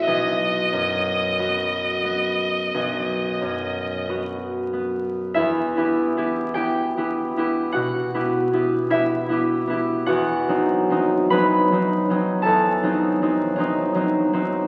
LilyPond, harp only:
\new Staff \with { instrumentName = "Harp" } { \time 4/4 \key e \minor \tempo 4 = 50 << { r1 | <e' e''>4 <g' g''>4 <fis' fis''>4 <e' e''>4 | <fis' fis''>4 <b' b''>4 <a' a''>2 | } \\ { <b,, fis'>8 fis,8 <b fis'>8 b8 b,,8 fis,8 <b fis'>8 b8 | \tuplet 3/2 { e,8 <b e' g'>8 <b e' g'>8 <b e'>8 <b e' g'>8 <b e' g'>8 b,8 <b e' g'>8 <b e' g'>8 <b g'>8 <b e' g'>8 <b e' g'>8 } | \tuplet 3/2 { e,8 <fis bis dis'>8 <fis bis dis'>8 <fis bis dis'>8 <fis bis dis'>8 <fis bis dis'>8 e,8 <fis bis dis'>8 <fis bis dis'>8 <fis bis dis'>8 <fis bis dis'>8 <fis bis dis'>8 } | } >> }